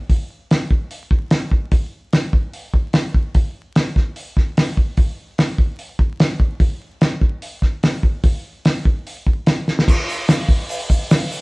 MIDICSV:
0, 0, Header, 1, 2, 480
1, 0, Start_track
1, 0, Tempo, 407332
1, 130, Time_signature, 4, 2, 24, 8
1, 13449, End_track
2, 0, Start_track
2, 0, Title_t, "Drums"
2, 112, Note_on_c, 9, 36, 101
2, 115, Note_on_c, 9, 46, 51
2, 230, Note_off_c, 9, 36, 0
2, 233, Note_off_c, 9, 46, 0
2, 596, Note_on_c, 9, 46, 51
2, 603, Note_on_c, 9, 38, 103
2, 714, Note_off_c, 9, 46, 0
2, 721, Note_off_c, 9, 38, 0
2, 831, Note_on_c, 9, 36, 84
2, 948, Note_off_c, 9, 36, 0
2, 1069, Note_on_c, 9, 46, 52
2, 1187, Note_off_c, 9, 46, 0
2, 1306, Note_on_c, 9, 36, 86
2, 1424, Note_off_c, 9, 36, 0
2, 1539, Note_on_c, 9, 46, 55
2, 1547, Note_on_c, 9, 38, 106
2, 1657, Note_off_c, 9, 46, 0
2, 1664, Note_off_c, 9, 38, 0
2, 1786, Note_on_c, 9, 36, 81
2, 1904, Note_off_c, 9, 36, 0
2, 2023, Note_on_c, 9, 46, 53
2, 2024, Note_on_c, 9, 36, 99
2, 2140, Note_off_c, 9, 46, 0
2, 2142, Note_off_c, 9, 36, 0
2, 2506, Note_on_c, 9, 46, 47
2, 2513, Note_on_c, 9, 38, 100
2, 2623, Note_off_c, 9, 46, 0
2, 2630, Note_off_c, 9, 38, 0
2, 2746, Note_on_c, 9, 36, 88
2, 2864, Note_off_c, 9, 36, 0
2, 2986, Note_on_c, 9, 46, 49
2, 3104, Note_off_c, 9, 46, 0
2, 3224, Note_on_c, 9, 36, 81
2, 3341, Note_off_c, 9, 36, 0
2, 3456, Note_on_c, 9, 46, 55
2, 3463, Note_on_c, 9, 38, 107
2, 3573, Note_off_c, 9, 46, 0
2, 3581, Note_off_c, 9, 38, 0
2, 3706, Note_on_c, 9, 36, 80
2, 3824, Note_off_c, 9, 36, 0
2, 3943, Note_on_c, 9, 46, 51
2, 3947, Note_on_c, 9, 36, 105
2, 4061, Note_off_c, 9, 46, 0
2, 4065, Note_off_c, 9, 36, 0
2, 4425, Note_on_c, 9, 46, 50
2, 4432, Note_on_c, 9, 38, 110
2, 4543, Note_off_c, 9, 46, 0
2, 4550, Note_off_c, 9, 38, 0
2, 4666, Note_on_c, 9, 36, 84
2, 4674, Note_on_c, 9, 38, 33
2, 4784, Note_off_c, 9, 36, 0
2, 4792, Note_off_c, 9, 38, 0
2, 4902, Note_on_c, 9, 46, 51
2, 5019, Note_off_c, 9, 46, 0
2, 5146, Note_on_c, 9, 36, 88
2, 5154, Note_on_c, 9, 38, 31
2, 5264, Note_off_c, 9, 36, 0
2, 5272, Note_off_c, 9, 38, 0
2, 5388, Note_on_c, 9, 46, 60
2, 5395, Note_on_c, 9, 38, 106
2, 5506, Note_off_c, 9, 46, 0
2, 5513, Note_off_c, 9, 38, 0
2, 5626, Note_on_c, 9, 36, 81
2, 5743, Note_off_c, 9, 36, 0
2, 5860, Note_on_c, 9, 46, 54
2, 5865, Note_on_c, 9, 36, 108
2, 5978, Note_off_c, 9, 46, 0
2, 5983, Note_off_c, 9, 36, 0
2, 6343, Note_on_c, 9, 46, 50
2, 6350, Note_on_c, 9, 38, 101
2, 6461, Note_off_c, 9, 46, 0
2, 6468, Note_off_c, 9, 38, 0
2, 6580, Note_on_c, 9, 36, 89
2, 6697, Note_off_c, 9, 36, 0
2, 6820, Note_on_c, 9, 46, 48
2, 6938, Note_off_c, 9, 46, 0
2, 7058, Note_on_c, 9, 36, 83
2, 7176, Note_off_c, 9, 36, 0
2, 7302, Note_on_c, 9, 46, 51
2, 7309, Note_on_c, 9, 38, 114
2, 7419, Note_off_c, 9, 46, 0
2, 7427, Note_off_c, 9, 38, 0
2, 7538, Note_on_c, 9, 36, 83
2, 7656, Note_off_c, 9, 36, 0
2, 7778, Note_on_c, 9, 36, 108
2, 7779, Note_on_c, 9, 46, 50
2, 7896, Note_off_c, 9, 36, 0
2, 7897, Note_off_c, 9, 46, 0
2, 8262, Note_on_c, 9, 46, 50
2, 8269, Note_on_c, 9, 38, 109
2, 8380, Note_off_c, 9, 46, 0
2, 8387, Note_off_c, 9, 38, 0
2, 8501, Note_on_c, 9, 36, 88
2, 8619, Note_off_c, 9, 36, 0
2, 8744, Note_on_c, 9, 46, 52
2, 8862, Note_off_c, 9, 46, 0
2, 8980, Note_on_c, 9, 36, 78
2, 8981, Note_on_c, 9, 38, 31
2, 9098, Note_off_c, 9, 36, 0
2, 9099, Note_off_c, 9, 38, 0
2, 9227, Note_on_c, 9, 46, 60
2, 9234, Note_on_c, 9, 38, 110
2, 9344, Note_off_c, 9, 46, 0
2, 9352, Note_off_c, 9, 38, 0
2, 9464, Note_on_c, 9, 36, 87
2, 9582, Note_off_c, 9, 36, 0
2, 9706, Note_on_c, 9, 46, 59
2, 9707, Note_on_c, 9, 36, 105
2, 9824, Note_off_c, 9, 46, 0
2, 9825, Note_off_c, 9, 36, 0
2, 10194, Note_on_c, 9, 46, 58
2, 10201, Note_on_c, 9, 38, 106
2, 10312, Note_off_c, 9, 46, 0
2, 10319, Note_off_c, 9, 38, 0
2, 10434, Note_on_c, 9, 36, 91
2, 10552, Note_off_c, 9, 36, 0
2, 10684, Note_on_c, 9, 46, 51
2, 10802, Note_off_c, 9, 46, 0
2, 10917, Note_on_c, 9, 36, 79
2, 11035, Note_off_c, 9, 36, 0
2, 11152, Note_on_c, 9, 46, 55
2, 11159, Note_on_c, 9, 38, 108
2, 11270, Note_off_c, 9, 46, 0
2, 11277, Note_off_c, 9, 38, 0
2, 11404, Note_on_c, 9, 38, 59
2, 11521, Note_off_c, 9, 38, 0
2, 11534, Note_on_c, 9, 38, 79
2, 11641, Note_on_c, 9, 36, 112
2, 11644, Note_on_c, 9, 49, 117
2, 11651, Note_on_c, 9, 82, 82
2, 11652, Note_off_c, 9, 38, 0
2, 11758, Note_off_c, 9, 36, 0
2, 11762, Note_off_c, 9, 49, 0
2, 11769, Note_off_c, 9, 82, 0
2, 11888, Note_on_c, 9, 46, 65
2, 11904, Note_on_c, 9, 82, 66
2, 12006, Note_off_c, 9, 46, 0
2, 12022, Note_off_c, 9, 82, 0
2, 12117, Note_on_c, 9, 46, 81
2, 12122, Note_on_c, 9, 82, 87
2, 12124, Note_on_c, 9, 38, 112
2, 12235, Note_off_c, 9, 46, 0
2, 12240, Note_off_c, 9, 82, 0
2, 12242, Note_off_c, 9, 38, 0
2, 12357, Note_on_c, 9, 36, 98
2, 12360, Note_on_c, 9, 46, 67
2, 12475, Note_off_c, 9, 36, 0
2, 12478, Note_off_c, 9, 46, 0
2, 12601, Note_on_c, 9, 46, 86
2, 12612, Note_on_c, 9, 82, 89
2, 12719, Note_off_c, 9, 46, 0
2, 12730, Note_off_c, 9, 82, 0
2, 12842, Note_on_c, 9, 36, 87
2, 12842, Note_on_c, 9, 46, 68
2, 12854, Note_on_c, 9, 82, 68
2, 12960, Note_off_c, 9, 36, 0
2, 12960, Note_off_c, 9, 46, 0
2, 12972, Note_off_c, 9, 82, 0
2, 13083, Note_on_c, 9, 82, 86
2, 13088, Note_on_c, 9, 46, 101
2, 13095, Note_on_c, 9, 38, 126
2, 13201, Note_off_c, 9, 82, 0
2, 13206, Note_off_c, 9, 46, 0
2, 13213, Note_off_c, 9, 38, 0
2, 13322, Note_on_c, 9, 46, 66
2, 13329, Note_on_c, 9, 82, 69
2, 13440, Note_off_c, 9, 46, 0
2, 13446, Note_off_c, 9, 82, 0
2, 13449, End_track
0, 0, End_of_file